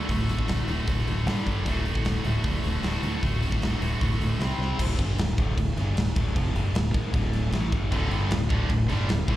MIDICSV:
0, 0, Header, 1, 5, 480
1, 0, Start_track
1, 0, Tempo, 391134
1, 107, Time_signature, 4, 2, 24, 8
1, 11492, End_track
2, 0, Start_track
2, 0, Title_t, "Distorted electric guitar"
2, 0, Program_c, 0, 30
2, 123, Note_on_c, 0, 50, 88
2, 135, Note_on_c, 0, 57, 95
2, 144, Note_on_c, 0, 66, 90
2, 804, Note_off_c, 0, 66, 0
2, 819, Note_on_c, 0, 66, 84
2, 824, Note_off_c, 0, 50, 0
2, 824, Note_off_c, 0, 57, 0
2, 838, Note_on_c, 0, 57, 83
2, 845, Note_on_c, 0, 50, 79
2, 1534, Note_off_c, 0, 66, 0
2, 1544, Note_off_c, 0, 57, 0
2, 1547, Note_off_c, 0, 50, 0
2, 2051, Note_on_c, 0, 57, 95
2, 2063, Note_on_c, 0, 66, 94
2, 2724, Note_off_c, 0, 66, 0
2, 2738, Note_on_c, 0, 66, 82
2, 2740, Note_off_c, 0, 57, 0
2, 2754, Note_on_c, 0, 57, 78
2, 2764, Note_on_c, 0, 50, 73
2, 3457, Note_off_c, 0, 66, 0
2, 3465, Note_off_c, 0, 57, 0
2, 3470, Note_off_c, 0, 50, 0
2, 3499, Note_on_c, 0, 57, 88
2, 3511, Note_on_c, 0, 66, 89
2, 3958, Note_off_c, 0, 57, 0
2, 3963, Note_off_c, 0, 66, 0
2, 3970, Note_on_c, 0, 50, 89
2, 3985, Note_on_c, 0, 57, 91
2, 3993, Note_on_c, 0, 66, 97
2, 4645, Note_off_c, 0, 66, 0
2, 4660, Note_on_c, 0, 66, 82
2, 4662, Note_off_c, 0, 57, 0
2, 4674, Note_off_c, 0, 50, 0
2, 4676, Note_on_c, 0, 57, 78
2, 4689, Note_on_c, 0, 50, 77
2, 5379, Note_off_c, 0, 66, 0
2, 5387, Note_off_c, 0, 57, 0
2, 5393, Note_off_c, 0, 50, 0
2, 11492, End_track
3, 0, Start_track
3, 0, Title_t, "Distorted electric guitar"
3, 0, Program_c, 1, 30
3, 115, Note_on_c, 1, 38, 71
3, 120, Note_on_c, 1, 45, 78
3, 328, Note_off_c, 1, 38, 0
3, 330, Note_off_c, 1, 45, 0
3, 360, Note_on_c, 1, 38, 67
3, 365, Note_on_c, 1, 45, 72
3, 571, Note_off_c, 1, 38, 0
3, 574, Note_off_c, 1, 45, 0
3, 600, Note_on_c, 1, 38, 73
3, 602, Note_on_c, 1, 45, 80
3, 812, Note_off_c, 1, 38, 0
3, 813, Note_off_c, 1, 45, 0
3, 835, Note_on_c, 1, 38, 70
3, 844, Note_on_c, 1, 45, 85
3, 1050, Note_off_c, 1, 38, 0
3, 1055, Note_off_c, 1, 45, 0
3, 1077, Note_on_c, 1, 38, 70
3, 1080, Note_on_c, 1, 45, 80
3, 1291, Note_off_c, 1, 38, 0
3, 1293, Note_off_c, 1, 45, 0
3, 1312, Note_on_c, 1, 45, 79
3, 1314, Note_on_c, 1, 38, 65
3, 1529, Note_off_c, 1, 45, 0
3, 1530, Note_off_c, 1, 38, 0
3, 1543, Note_on_c, 1, 43, 81
3, 1551, Note_on_c, 1, 50, 82
3, 1563, Note_on_c, 1, 55, 85
3, 1769, Note_off_c, 1, 43, 0
3, 1780, Note_off_c, 1, 50, 0
3, 1784, Note_on_c, 1, 43, 95
3, 1785, Note_off_c, 1, 55, 0
3, 1798, Note_on_c, 1, 50, 92
3, 1799, Note_on_c, 1, 55, 98
3, 2016, Note_off_c, 1, 43, 0
3, 2023, Note_off_c, 1, 50, 0
3, 2024, Note_off_c, 1, 55, 0
3, 2028, Note_on_c, 1, 38, 86
3, 2032, Note_on_c, 1, 45, 93
3, 2042, Note_on_c, 1, 50, 89
3, 2259, Note_off_c, 1, 38, 0
3, 2261, Note_off_c, 1, 45, 0
3, 2266, Note_off_c, 1, 50, 0
3, 2271, Note_on_c, 1, 38, 69
3, 2275, Note_on_c, 1, 45, 77
3, 2491, Note_off_c, 1, 38, 0
3, 2493, Note_off_c, 1, 45, 0
3, 2523, Note_on_c, 1, 38, 79
3, 2525, Note_on_c, 1, 45, 82
3, 2738, Note_off_c, 1, 38, 0
3, 2739, Note_off_c, 1, 45, 0
3, 2757, Note_on_c, 1, 38, 72
3, 2766, Note_on_c, 1, 45, 84
3, 2975, Note_off_c, 1, 38, 0
3, 2979, Note_off_c, 1, 45, 0
3, 3006, Note_on_c, 1, 38, 73
3, 3008, Note_on_c, 1, 45, 78
3, 3220, Note_off_c, 1, 38, 0
3, 3221, Note_off_c, 1, 45, 0
3, 3236, Note_on_c, 1, 38, 69
3, 3245, Note_on_c, 1, 45, 78
3, 3456, Note_off_c, 1, 38, 0
3, 3460, Note_off_c, 1, 45, 0
3, 3485, Note_on_c, 1, 38, 83
3, 3494, Note_on_c, 1, 45, 83
3, 3497, Note_on_c, 1, 50, 89
3, 3698, Note_off_c, 1, 38, 0
3, 3707, Note_off_c, 1, 45, 0
3, 3713, Note_on_c, 1, 38, 97
3, 3716, Note_off_c, 1, 50, 0
3, 3722, Note_on_c, 1, 45, 97
3, 3729, Note_on_c, 1, 50, 102
3, 3938, Note_off_c, 1, 38, 0
3, 3942, Note_off_c, 1, 45, 0
3, 3952, Note_off_c, 1, 50, 0
3, 3953, Note_on_c, 1, 38, 73
3, 3956, Note_on_c, 1, 45, 85
3, 4175, Note_off_c, 1, 38, 0
3, 4176, Note_off_c, 1, 45, 0
3, 4201, Note_on_c, 1, 38, 73
3, 4202, Note_on_c, 1, 45, 80
3, 4419, Note_off_c, 1, 38, 0
3, 4420, Note_off_c, 1, 45, 0
3, 4439, Note_on_c, 1, 38, 76
3, 4445, Note_on_c, 1, 45, 74
3, 4658, Note_off_c, 1, 38, 0
3, 4661, Note_off_c, 1, 45, 0
3, 4672, Note_on_c, 1, 38, 71
3, 4678, Note_on_c, 1, 45, 77
3, 4895, Note_off_c, 1, 38, 0
3, 4898, Note_off_c, 1, 45, 0
3, 4922, Note_on_c, 1, 38, 73
3, 4927, Note_on_c, 1, 45, 81
3, 5140, Note_off_c, 1, 38, 0
3, 5142, Note_off_c, 1, 45, 0
3, 5167, Note_on_c, 1, 38, 65
3, 5172, Note_on_c, 1, 45, 76
3, 5382, Note_off_c, 1, 38, 0
3, 5385, Note_off_c, 1, 45, 0
3, 5398, Note_on_c, 1, 48, 85
3, 5407, Note_on_c, 1, 55, 84
3, 5416, Note_on_c, 1, 60, 95
3, 5628, Note_off_c, 1, 48, 0
3, 5632, Note_off_c, 1, 55, 0
3, 5636, Note_off_c, 1, 60, 0
3, 5641, Note_on_c, 1, 48, 91
3, 5647, Note_on_c, 1, 55, 86
3, 5654, Note_on_c, 1, 60, 89
3, 5869, Note_off_c, 1, 48, 0
3, 5872, Note_off_c, 1, 55, 0
3, 5875, Note_off_c, 1, 60, 0
3, 5879, Note_on_c, 1, 38, 99
3, 5892, Note_on_c, 1, 45, 108
3, 5900, Note_on_c, 1, 50, 112
3, 6109, Note_off_c, 1, 50, 0
3, 6115, Note_off_c, 1, 38, 0
3, 6119, Note_off_c, 1, 45, 0
3, 6119, Note_on_c, 1, 43, 93
3, 6124, Note_on_c, 1, 50, 100
3, 6131, Note_on_c, 1, 55, 94
3, 6355, Note_off_c, 1, 43, 0
3, 6358, Note_off_c, 1, 50, 0
3, 6361, Note_off_c, 1, 55, 0
3, 6370, Note_on_c, 1, 38, 65
3, 6372, Note_on_c, 1, 45, 75
3, 6559, Note_off_c, 1, 38, 0
3, 6561, Note_off_c, 1, 45, 0
3, 6601, Note_on_c, 1, 38, 97
3, 6614, Note_on_c, 1, 45, 101
3, 6620, Note_on_c, 1, 50, 111
3, 6831, Note_off_c, 1, 38, 0
3, 6835, Note_off_c, 1, 45, 0
3, 6845, Note_off_c, 1, 50, 0
3, 6845, Note_on_c, 1, 38, 60
3, 6849, Note_on_c, 1, 45, 71
3, 7037, Note_off_c, 1, 38, 0
3, 7039, Note_off_c, 1, 45, 0
3, 7083, Note_on_c, 1, 43, 92
3, 7091, Note_on_c, 1, 50, 97
3, 7096, Note_on_c, 1, 55, 103
3, 7307, Note_off_c, 1, 43, 0
3, 7309, Note_off_c, 1, 50, 0
3, 7312, Note_on_c, 1, 38, 65
3, 7314, Note_on_c, 1, 45, 69
3, 7322, Note_off_c, 1, 55, 0
3, 7510, Note_off_c, 1, 38, 0
3, 7511, Note_off_c, 1, 45, 0
3, 7555, Note_on_c, 1, 38, 92
3, 7569, Note_on_c, 1, 45, 98
3, 7573, Note_on_c, 1, 50, 96
3, 7788, Note_off_c, 1, 38, 0
3, 7793, Note_on_c, 1, 41, 102
3, 7798, Note_off_c, 1, 45, 0
3, 7800, Note_off_c, 1, 50, 0
3, 7803, Note_on_c, 1, 48, 96
3, 7808, Note_on_c, 1, 53, 101
3, 8027, Note_off_c, 1, 41, 0
3, 8032, Note_on_c, 1, 43, 94
3, 8033, Note_off_c, 1, 48, 0
3, 8038, Note_off_c, 1, 53, 0
3, 8038, Note_on_c, 1, 50, 84
3, 8044, Note_on_c, 1, 55, 107
3, 8269, Note_off_c, 1, 43, 0
3, 8272, Note_off_c, 1, 50, 0
3, 8275, Note_off_c, 1, 55, 0
3, 8282, Note_on_c, 1, 38, 65
3, 8286, Note_on_c, 1, 45, 74
3, 8473, Note_off_c, 1, 38, 0
3, 8475, Note_off_c, 1, 45, 0
3, 8509, Note_on_c, 1, 44, 103
3, 8518, Note_on_c, 1, 51, 102
3, 8530, Note_on_c, 1, 56, 100
3, 8747, Note_off_c, 1, 44, 0
3, 8751, Note_off_c, 1, 51, 0
3, 8756, Note_on_c, 1, 38, 98
3, 8757, Note_off_c, 1, 56, 0
3, 8767, Note_on_c, 1, 45, 99
3, 8778, Note_on_c, 1, 50, 111
3, 9225, Note_off_c, 1, 45, 0
3, 9229, Note_off_c, 1, 38, 0
3, 9240, Note_off_c, 1, 50, 0
3, 9240, Note_on_c, 1, 45, 92
3, 9250, Note_on_c, 1, 52, 92
3, 9257, Note_on_c, 1, 57, 97
3, 9471, Note_off_c, 1, 45, 0
3, 9476, Note_off_c, 1, 52, 0
3, 9477, Note_on_c, 1, 43, 94
3, 9480, Note_off_c, 1, 57, 0
3, 9486, Note_on_c, 1, 50, 93
3, 9495, Note_on_c, 1, 55, 98
3, 9709, Note_off_c, 1, 43, 0
3, 9713, Note_off_c, 1, 50, 0
3, 9718, Note_off_c, 1, 55, 0
3, 9721, Note_on_c, 1, 38, 99
3, 9729, Note_on_c, 1, 45, 105
3, 9737, Note_on_c, 1, 50, 113
3, 9951, Note_off_c, 1, 38, 0
3, 9955, Note_off_c, 1, 45, 0
3, 9957, Note_on_c, 1, 43, 98
3, 9959, Note_off_c, 1, 50, 0
3, 9973, Note_on_c, 1, 50, 102
3, 9979, Note_on_c, 1, 55, 99
3, 10188, Note_off_c, 1, 43, 0
3, 10196, Note_off_c, 1, 50, 0
3, 10196, Note_on_c, 1, 38, 66
3, 10199, Note_off_c, 1, 55, 0
3, 10200, Note_on_c, 1, 45, 77
3, 10386, Note_off_c, 1, 38, 0
3, 10389, Note_off_c, 1, 45, 0
3, 10432, Note_on_c, 1, 38, 101
3, 10438, Note_on_c, 1, 45, 101
3, 10448, Note_on_c, 1, 50, 113
3, 10653, Note_off_c, 1, 38, 0
3, 10660, Note_off_c, 1, 45, 0
3, 10668, Note_on_c, 1, 38, 67
3, 10673, Note_off_c, 1, 50, 0
3, 10675, Note_on_c, 1, 45, 74
3, 10862, Note_off_c, 1, 38, 0
3, 10865, Note_off_c, 1, 45, 0
3, 10897, Note_on_c, 1, 43, 91
3, 10905, Note_on_c, 1, 50, 90
3, 10914, Note_on_c, 1, 55, 98
3, 11136, Note_off_c, 1, 43, 0
3, 11140, Note_off_c, 1, 50, 0
3, 11143, Note_on_c, 1, 38, 63
3, 11145, Note_off_c, 1, 55, 0
3, 11147, Note_on_c, 1, 45, 79
3, 11338, Note_off_c, 1, 38, 0
3, 11340, Note_off_c, 1, 45, 0
3, 11374, Note_on_c, 1, 38, 95
3, 11384, Note_on_c, 1, 45, 103
3, 11390, Note_on_c, 1, 50, 113
3, 11492, Note_off_c, 1, 38, 0
3, 11492, Note_off_c, 1, 45, 0
3, 11492, Note_off_c, 1, 50, 0
3, 11492, End_track
4, 0, Start_track
4, 0, Title_t, "Fingered electric bass"
4, 0, Program_c, 2, 33
4, 105, Note_on_c, 2, 26, 89
4, 415, Note_off_c, 2, 26, 0
4, 590, Note_on_c, 2, 26, 81
4, 744, Note_off_c, 2, 26, 0
4, 832, Note_on_c, 2, 26, 83
4, 986, Note_off_c, 2, 26, 0
4, 1076, Note_on_c, 2, 26, 91
4, 1229, Note_off_c, 2, 26, 0
4, 1317, Note_on_c, 2, 26, 90
4, 1554, Note_off_c, 2, 26, 0
4, 1554, Note_on_c, 2, 31, 94
4, 1708, Note_off_c, 2, 31, 0
4, 1791, Note_on_c, 2, 31, 88
4, 1947, Note_off_c, 2, 31, 0
4, 2029, Note_on_c, 2, 26, 90
4, 2340, Note_off_c, 2, 26, 0
4, 2512, Note_on_c, 2, 26, 85
4, 2668, Note_off_c, 2, 26, 0
4, 2758, Note_on_c, 2, 26, 78
4, 2913, Note_off_c, 2, 26, 0
4, 2990, Note_on_c, 2, 26, 94
4, 3147, Note_off_c, 2, 26, 0
4, 3233, Note_on_c, 2, 26, 86
4, 3390, Note_off_c, 2, 26, 0
4, 3475, Note_on_c, 2, 26, 86
4, 3632, Note_off_c, 2, 26, 0
4, 3719, Note_on_c, 2, 38, 89
4, 3874, Note_off_c, 2, 38, 0
4, 3961, Note_on_c, 2, 26, 87
4, 4269, Note_off_c, 2, 26, 0
4, 4426, Note_on_c, 2, 26, 80
4, 4586, Note_off_c, 2, 26, 0
4, 4665, Note_on_c, 2, 26, 82
4, 4825, Note_off_c, 2, 26, 0
4, 4924, Note_on_c, 2, 26, 89
4, 5078, Note_off_c, 2, 26, 0
4, 5149, Note_on_c, 2, 26, 92
4, 5308, Note_off_c, 2, 26, 0
4, 5389, Note_on_c, 2, 36, 88
4, 5548, Note_off_c, 2, 36, 0
4, 5628, Note_on_c, 2, 36, 81
4, 5787, Note_off_c, 2, 36, 0
4, 5875, Note_on_c, 2, 26, 90
4, 6103, Note_off_c, 2, 26, 0
4, 6116, Note_on_c, 2, 31, 102
4, 6344, Note_off_c, 2, 31, 0
4, 6349, Note_on_c, 2, 26, 78
4, 6579, Note_off_c, 2, 26, 0
4, 6601, Note_on_c, 2, 26, 93
4, 6826, Note_off_c, 2, 26, 0
4, 6837, Note_on_c, 2, 26, 82
4, 7064, Note_off_c, 2, 26, 0
4, 7073, Note_on_c, 2, 31, 94
4, 7301, Note_off_c, 2, 31, 0
4, 7318, Note_on_c, 2, 26, 78
4, 7544, Note_off_c, 2, 26, 0
4, 7560, Note_on_c, 2, 26, 97
4, 7784, Note_off_c, 2, 26, 0
4, 7801, Note_on_c, 2, 29, 92
4, 8024, Note_off_c, 2, 29, 0
4, 8042, Note_on_c, 2, 31, 108
4, 8265, Note_off_c, 2, 31, 0
4, 8272, Note_on_c, 2, 26, 81
4, 8499, Note_off_c, 2, 26, 0
4, 8517, Note_on_c, 2, 32, 90
4, 8741, Note_off_c, 2, 32, 0
4, 8759, Note_on_c, 2, 26, 95
4, 9204, Note_off_c, 2, 26, 0
4, 9233, Note_on_c, 2, 33, 100
4, 9458, Note_off_c, 2, 33, 0
4, 9474, Note_on_c, 2, 31, 99
4, 9698, Note_off_c, 2, 31, 0
4, 9712, Note_on_c, 2, 26, 99
4, 9936, Note_off_c, 2, 26, 0
4, 9955, Note_on_c, 2, 31, 101
4, 10177, Note_off_c, 2, 31, 0
4, 10197, Note_on_c, 2, 26, 76
4, 10418, Note_off_c, 2, 26, 0
4, 10435, Note_on_c, 2, 26, 90
4, 10657, Note_off_c, 2, 26, 0
4, 10670, Note_on_c, 2, 26, 82
4, 10894, Note_off_c, 2, 26, 0
4, 10920, Note_on_c, 2, 31, 98
4, 11138, Note_off_c, 2, 31, 0
4, 11159, Note_on_c, 2, 26, 87
4, 11378, Note_off_c, 2, 26, 0
4, 11386, Note_on_c, 2, 26, 94
4, 11492, Note_off_c, 2, 26, 0
4, 11492, End_track
5, 0, Start_track
5, 0, Title_t, "Drums"
5, 112, Note_on_c, 9, 36, 101
5, 112, Note_on_c, 9, 46, 70
5, 235, Note_off_c, 9, 36, 0
5, 235, Note_off_c, 9, 46, 0
5, 359, Note_on_c, 9, 46, 57
5, 473, Note_on_c, 9, 36, 88
5, 482, Note_off_c, 9, 46, 0
5, 592, Note_on_c, 9, 46, 82
5, 596, Note_off_c, 9, 36, 0
5, 606, Note_on_c, 9, 38, 110
5, 714, Note_off_c, 9, 46, 0
5, 729, Note_off_c, 9, 38, 0
5, 835, Note_on_c, 9, 46, 58
5, 958, Note_off_c, 9, 46, 0
5, 1073, Note_on_c, 9, 46, 62
5, 1076, Note_on_c, 9, 36, 103
5, 1196, Note_off_c, 9, 46, 0
5, 1198, Note_off_c, 9, 36, 0
5, 1217, Note_on_c, 9, 38, 30
5, 1318, Note_on_c, 9, 46, 46
5, 1339, Note_off_c, 9, 38, 0
5, 1441, Note_off_c, 9, 46, 0
5, 1556, Note_on_c, 9, 46, 67
5, 1570, Note_on_c, 9, 38, 107
5, 1678, Note_off_c, 9, 46, 0
5, 1693, Note_off_c, 9, 38, 0
5, 1700, Note_on_c, 9, 38, 34
5, 1799, Note_on_c, 9, 36, 76
5, 1804, Note_on_c, 9, 46, 51
5, 1823, Note_off_c, 9, 38, 0
5, 1922, Note_off_c, 9, 36, 0
5, 1927, Note_off_c, 9, 46, 0
5, 2037, Note_on_c, 9, 46, 69
5, 2038, Note_on_c, 9, 36, 103
5, 2160, Note_off_c, 9, 36, 0
5, 2160, Note_off_c, 9, 46, 0
5, 2278, Note_on_c, 9, 46, 51
5, 2397, Note_on_c, 9, 36, 85
5, 2400, Note_off_c, 9, 46, 0
5, 2513, Note_on_c, 9, 46, 73
5, 2520, Note_off_c, 9, 36, 0
5, 2528, Note_on_c, 9, 38, 109
5, 2636, Note_off_c, 9, 46, 0
5, 2651, Note_off_c, 9, 38, 0
5, 2752, Note_on_c, 9, 46, 56
5, 2875, Note_off_c, 9, 46, 0
5, 2993, Note_on_c, 9, 46, 71
5, 2997, Note_on_c, 9, 36, 106
5, 3116, Note_off_c, 9, 46, 0
5, 3120, Note_off_c, 9, 36, 0
5, 3235, Note_on_c, 9, 46, 49
5, 3358, Note_off_c, 9, 46, 0
5, 3476, Note_on_c, 9, 46, 71
5, 3490, Note_on_c, 9, 38, 99
5, 3598, Note_off_c, 9, 46, 0
5, 3613, Note_off_c, 9, 38, 0
5, 3720, Note_on_c, 9, 46, 57
5, 3843, Note_off_c, 9, 46, 0
5, 3962, Note_on_c, 9, 36, 105
5, 3966, Note_on_c, 9, 46, 70
5, 4085, Note_off_c, 9, 36, 0
5, 4088, Note_off_c, 9, 46, 0
5, 4204, Note_on_c, 9, 46, 59
5, 4323, Note_on_c, 9, 36, 86
5, 4327, Note_off_c, 9, 46, 0
5, 4445, Note_on_c, 9, 46, 81
5, 4446, Note_off_c, 9, 36, 0
5, 4460, Note_on_c, 9, 38, 115
5, 4568, Note_off_c, 9, 46, 0
5, 4582, Note_off_c, 9, 38, 0
5, 4686, Note_on_c, 9, 46, 64
5, 4809, Note_off_c, 9, 46, 0
5, 4924, Note_on_c, 9, 36, 104
5, 4928, Note_on_c, 9, 46, 70
5, 5047, Note_off_c, 9, 36, 0
5, 5051, Note_off_c, 9, 46, 0
5, 5064, Note_on_c, 9, 38, 30
5, 5172, Note_on_c, 9, 46, 50
5, 5187, Note_off_c, 9, 38, 0
5, 5294, Note_off_c, 9, 46, 0
5, 5406, Note_on_c, 9, 46, 69
5, 5421, Note_on_c, 9, 38, 100
5, 5529, Note_off_c, 9, 46, 0
5, 5540, Note_off_c, 9, 38, 0
5, 5540, Note_on_c, 9, 38, 31
5, 5662, Note_off_c, 9, 38, 0
5, 5663, Note_on_c, 9, 38, 57
5, 5786, Note_off_c, 9, 38, 0
5, 5882, Note_on_c, 9, 36, 102
5, 5885, Note_on_c, 9, 49, 120
5, 5885, Note_on_c, 9, 57, 76
5, 6005, Note_off_c, 9, 36, 0
5, 6008, Note_off_c, 9, 49, 0
5, 6008, Note_off_c, 9, 57, 0
5, 6122, Note_on_c, 9, 36, 105
5, 6125, Note_on_c, 9, 57, 65
5, 6244, Note_off_c, 9, 36, 0
5, 6247, Note_off_c, 9, 57, 0
5, 6360, Note_on_c, 9, 57, 88
5, 6375, Note_on_c, 9, 38, 122
5, 6483, Note_off_c, 9, 57, 0
5, 6498, Note_off_c, 9, 38, 0
5, 6604, Note_on_c, 9, 36, 117
5, 6606, Note_on_c, 9, 57, 68
5, 6621, Note_on_c, 9, 38, 35
5, 6727, Note_off_c, 9, 36, 0
5, 6729, Note_off_c, 9, 57, 0
5, 6743, Note_off_c, 9, 38, 0
5, 6843, Note_on_c, 9, 36, 89
5, 6846, Note_on_c, 9, 57, 74
5, 6966, Note_off_c, 9, 36, 0
5, 6969, Note_off_c, 9, 57, 0
5, 7085, Note_on_c, 9, 57, 59
5, 7100, Note_on_c, 9, 38, 28
5, 7208, Note_off_c, 9, 57, 0
5, 7222, Note_off_c, 9, 38, 0
5, 7325, Note_on_c, 9, 57, 83
5, 7339, Note_on_c, 9, 38, 105
5, 7447, Note_off_c, 9, 57, 0
5, 7462, Note_off_c, 9, 38, 0
5, 7563, Note_on_c, 9, 36, 105
5, 7566, Note_on_c, 9, 57, 68
5, 7686, Note_off_c, 9, 36, 0
5, 7689, Note_off_c, 9, 57, 0
5, 7804, Note_on_c, 9, 36, 102
5, 7807, Note_on_c, 9, 57, 81
5, 7927, Note_off_c, 9, 36, 0
5, 7930, Note_off_c, 9, 57, 0
5, 8045, Note_on_c, 9, 57, 61
5, 8168, Note_off_c, 9, 57, 0
5, 8283, Note_on_c, 9, 57, 92
5, 8298, Note_on_c, 9, 38, 127
5, 8406, Note_off_c, 9, 57, 0
5, 8421, Note_off_c, 9, 38, 0
5, 8521, Note_on_c, 9, 57, 66
5, 8522, Note_on_c, 9, 36, 115
5, 8644, Note_off_c, 9, 57, 0
5, 8645, Note_off_c, 9, 36, 0
5, 8759, Note_on_c, 9, 57, 77
5, 8760, Note_on_c, 9, 36, 104
5, 8882, Note_off_c, 9, 57, 0
5, 8883, Note_off_c, 9, 36, 0
5, 8998, Note_on_c, 9, 57, 57
5, 9013, Note_on_c, 9, 38, 31
5, 9121, Note_off_c, 9, 57, 0
5, 9136, Note_off_c, 9, 38, 0
5, 9233, Note_on_c, 9, 57, 73
5, 9248, Note_on_c, 9, 38, 106
5, 9356, Note_off_c, 9, 57, 0
5, 9371, Note_off_c, 9, 38, 0
5, 9479, Note_on_c, 9, 36, 108
5, 9481, Note_on_c, 9, 57, 57
5, 9602, Note_off_c, 9, 36, 0
5, 9604, Note_off_c, 9, 57, 0
5, 9719, Note_on_c, 9, 36, 98
5, 9721, Note_on_c, 9, 57, 74
5, 9841, Note_off_c, 9, 36, 0
5, 9844, Note_off_c, 9, 57, 0
5, 9953, Note_on_c, 9, 57, 60
5, 10076, Note_off_c, 9, 57, 0
5, 10194, Note_on_c, 9, 57, 80
5, 10209, Note_on_c, 9, 38, 120
5, 10317, Note_off_c, 9, 57, 0
5, 10332, Note_off_c, 9, 38, 0
5, 10433, Note_on_c, 9, 57, 64
5, 10435, Note_on_c, 9, 36, 116
5, 10555, Note_off_c, 9, 57, 0
5, 10557, Note_off_c, 9, 36, 0
5, 10669, Note_on_c, 9, 57, 78
5, 10674, Note_on_c, 9, 36, 87
5, 10791, Note_off_c, 9, 57, 0
5, 10797, Note_off_c, 9, 36, 0
5, 10914, Note_on_c, 9, 57, 60
5, 10929, Note_on_c, 9, 38, 31
5, 11037, Note_off_c, 9, 57, 0
5, 11052, Note_off_c, 9, 38, 0
5, 11153, Note_on_c, 9, 57, 80
5, 11168, Note_on_c, 9, 38, 112
5, 11276, Note_off_c, 9, 57, 0
5, 11291, Note_off_c, 9, 38, 0
5, 11390, Note_on_c, 9, 36, 110
5, 11390, Note_on_c, 9, 57, 65
5, 11492, Note_off_c, 9, 36, 0
5, 11492, Note_off_c, 9, 57, 0
5, 11492, End_track
0, 0, End_of_file